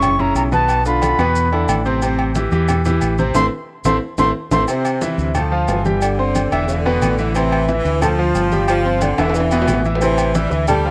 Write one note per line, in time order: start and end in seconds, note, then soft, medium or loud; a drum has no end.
0.00 0.32 F#1 medium
0.00 0.13 C#3 medium
0.00 0.13 C#4 medium
0.00 0.13 E4 medium
0.00 0.22 C#6 medium
0.00 high conga soft
0.00 low conga medium
0.00 low agogo loud
0.00 maracas medium
0.19 0.46 C#3 medium
0.19 0.46 C#4 medium
0.19 0.46 E4 medium
0.19 0.36 A#5 medium
0.19 high conga soft
0.19 low conga medium
0.35 1.13 B1 medium
0.35 0.43 A#5 medium
0.35 high conga soft
0.35 low agogo medium
0.35 maracas medium
0.52 0.79 B2 medium
0.52 0.80 B3 medium
0.52 0.80 B4 medium
0.52 0.84 A5 medium
0.52 high conga medium
0.52 maracas soft
0.69 high conga soft
0.69 low agogo medium
0.69 maracas medium
0.85 0.99 D3 medium
0.85 0.99 D4 medium
0.85 1.00 F4 medium
0.85 1.82 B5 medium
0.85 high conga soft
0.85 maracas medium
1.02 1.16 D3 medium
1.02 1.16 D4 medium
1.02 1.16 F4 medium
1.02 high conga loud
1.02 low agogo medium
1.02 maracas medium
1.18 1.65 E2 medium
1.18 1.46 B2 medium
1.18 1.46 B3 medium
1.18 1.46 B4 loud
1.18 low agogo medium
1.18 maracas soft
1.36 high conga soft
1.36 maracas medium
1.52 1.79 D3 medium
1.52 1.80 D4 medium
1.52 1.80 E4 medium
1.52 high conga soft
1.52 low agogo medium
1.68 2.46 A1 loud
1.68 high conga medium
1.68 low agogo loud
1.68 maracas medium
1.85 1.99 C3 medium
1.85 1.99 C4 medium
1.85 1.99 C5 medium
1.85 high conga soft
1.85 maracas soft
2.02 2.30 C3 medium
2.02 2.30 C4 medium
2.02 2.30 C5 medium
2.02 high conga soft
2.02 low agogo medium
2.02 maracas medium
2.19 high conga soft
2.19 low agogo medium
2.35 2.50 E3 medium
2.35 2.50 E4 medium
2.35 2.50 G4 medium
2.35 high conga loud
2.35 maracas medium
2.52 2.98 E2 loud
2.52 2.79 E3 medium
2.52 2.80 E4 medium
2.52 2.80 G4 medium
2.52 maracas soft
2.68 high conga soft
2.68 low conga medium
2.68 low agogo loud
2.68 maracas medium
2.85 3.13 E3 medium
2.85 3.13 E4 medium
2.85 3.13 G4 medium
2.85 high conga soft
2.85 low conga medium
2.85 maracas medium
3.01 3.33 A1 medium
3.01 high conga soft
3.01 low agogo medium
3.01 maracas medium
3.18 3.32 C3 medium
3.18 3.32 C4 medium
3.18 3.33 C5 medium
3.18 high conga medium
3.18 maracas soft
3.35 3.47 A1 medium
3.35 3.46 A3 loud
3.35 3.46 C4 medium
3.35 3.46 E4 loud
3.35 3.46 C6 loud
3.35 high conga medium
3.35 high timbale loud
3.35 maracas loud
3.84 3.97 A1 medium
3.84 3.96 A3 loud
3.84 3.96 C4 loud
3.84 3.96 E4 loud
3.84 3.96 C6 medium
3.84 high conga loud
3.84 high timbale medium
3.84 maracas loud
4.18 4.30 A1 loud
4.18 4.29 A3 loud
4.18 4.29 C4 medium
4.18 4.29 E4 loud
4.18 4.30 C6 medium
4.18 high conga loud
4.18 high timbale medium
4.18 maracas medium
4.51 4.64 A1 medium
4.51 4.63 A3 medium
4.51 4.63 C4 medium
4.51 4.63 E4 medium
4.51 4.63 C6 medium
4.51 high conga loud
4.51 high timbale loud
4.51 maracas medium
4.68 4.96 C3 medium
4.68 5.32 C3 medium
4.68 4.96 C4 medium
4.68 4.96 C5 medium
4.68 high conga soft
4.68 low agogo medium
4.68 maracas medium
4.85 high conga soft
4.85 low agogo loud
4.85 maracas medium
5.01 5.29 E3 medium
5.01 5.29 E4 medium
5.01 5.29 E5 medium
5.01 high conga loud
5.01 maracas medium
5.18 5.65 D2 medium
5.18 maracas soft
5.35 5.69 F3 medium
5.35 5.49 A3 medium
5.35 5.49 A4 medium
5.35 5.49 A5 medium
5.35 high conga soft
5.35 low conga medium
5.35 low agogo loud
5.35 maracas medium
5.52 5.79 F3 medium
5.52 5.79 F4 medium
5.52 5.79 F5 medium
5.52 high conga soft
5.68 6.46 G1 loud
5.68 6.00 E3 medium
5.68 high conga soft
5.68 low timbale medium
5.68 low agogo medium
5.68 maracas medium
5.85 6.13 G3 medium
5.85 6.13 G4 medium
5.85 6.13 G5 medium
5.85 high conga medium
5.85 maracas soft
6.02 6.65 D3 loud
6.02 high conga soft
6.02 low agogo loud
6.02 maracas medium
6.19 6.46 C4 medium
6.19 6.46 C5 medium
6.19 6.46 C6 medium
6.19 high conga soft
6.35 high conga loud
6.35 low agogo medium
6.35 maracas medium
6.52 6.98 E1 loud
6.52 6.79 E3 medium
6.52 6.80 E4 medium
6.52 6.80 E5 medium
6.52 low agogo loud
6.52 maracas soft
6.68 7.31 D3 loud
6.68 high conga soft
6.68 maracas medium
6.85 7.13 B2 loud
6.85 7.13 B3 loud
6.85 7.13 B4 loud
6.85 high conga soft
6.85 low agogo medium
7.02 7.79 A1 loud
7.02 high conga medium
7.02 low agogo loud
7.02 maracas medium
7.18 7.32 E3 medium
7.18 7.33 E4 medium
7.18 7.33 E5 medium
7.18 high conga soft
7.18 maracas soft
7.35 7.63 C3 medium
7.35 8.02 E3 loud
7.35 7.63 C4 medium
7.35 7.63 C5 medium
7.35 high conga soft
7.35 low agogo medium
7.35 maracas medium
7.52 high conga soft
7.52 low agogo loud
7.68 7.96 E3 medium
7.68 7.96 E4 medium
7.68 7.96 E5 medium
7.68 high conga loud
7.68 maracas medium
7.85 8.31 D2 loud
7.85 high conga soft
7.85 maracas soft
8.02 8.67 F3 loud
8.02 8.15 A3 medium
8.02 8.16 A4 medium
8.02 8.16 A5 medium
8.02 high conga soft
8.02 low conga medium
8.02 low agogo loud
8.02 maracas medium
8.19 8.46 F3 medium
8.19 8.46 F4 medium
8.19 8.46 F5 medium
8.35 9.13 G1 loud
8.35 high conga soft
8.35 low agogo medium
8.35 maracas medium
8.52 8.79 G3 medium
8.52 8.80 G4 medium
8.52 8.80 G5 medium
8.52 high conga medium
8.52 maracas soft
8.68 8.99 F3 loud
8.68 low agogo loud
8.68 maracas medium
8.85 9.13 C4 medium
8.85 9.13 C5 medium
8.85 9.13 C6 medium
8.85 high conga soft
9.01 9.35 D3 loud
9.01 high conga loud
9.01 low agogo medium
9.01 maracas medium
9.18 9.65 E1 medium
9.18 9.46 E3 medium
9.18 9.46 E4 medium
9.18 9.46 E5 medium
9.18 high timbale loud
9.18 low agogo loud
9.18 maracas soft
9.29 high timbale medium
9.35 9.85 E3 loud
9.35 high conga soft
9.35 maracas medium
9.40 high timbale medium
9.51 9.79 B2 loud
9.51 9.79 B3 loud
9.51 9.80 B4 medium
9.51 high conga soft
9.51 low agogo medium
9.51 maracas medium
9.62 low timbale loud
9.68 10.46 A1 loud
9.68 high conga medium
9.68 low agogo loud
9.68 maracas medium
9.74 low timbale medium
9.85 9.99 E3 medium
9.85 9.99 E4 medium
9.85 9.99 E5 medium
9.85 high conga soft
9.85 maracas soft
9.95 low timbale medium
10.01 10.29 C3 medium
10.01 10.33 E3 loud
10.01 10.29 C4 medium
10.01 10.29 C5 medium
10.01 high conga soft
10.01 low agogo medium
10.01 maracas medium
10.18 high conga soft
10.18 low agogo loud
10.18 maracas medium
10.35 10.62 E3 medium
10.35 10.52 G3 loud
10.35 10.63 E4 medium
10.35 10.63 E5 medium
10.35 high conga loud
10.35 maracas medium
10.51 10.91 D2 medium
10.51 10.68 E3 loud
10.51 maracas soft
10.68 10.91 G3 loud
10.68 10.82 A3 medium
10.68 10.82 A4 medium
10.68 10.82 A5 medium
10.68 high conga soft
10.68 low conga medium
10.68 low agogo loud
10.68 maracas medium
10.85 10.91 F3 medium
10.85 10.91 F4 medium
10.85 10.91 F5 medium
10.85 high conga soft